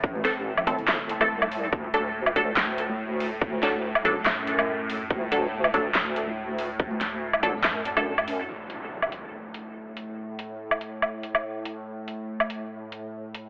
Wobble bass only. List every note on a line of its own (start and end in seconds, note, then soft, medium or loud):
0.04 0.63 A1 loud
0.63 0.87 G#1 loud
0.88 1.29 G1 medium
1.30 1.71 C2 loud
1.73 2.56 D2 loud
2.57 3.40 D2 medium
3.41 4.24 D2 loud
4.26 5.09 F#2 loud
5.10 5.93 D2 medium
5.95 6.78 D2 loud
6.80 7.63 D2 medium
7.64 8.47 F#2 medium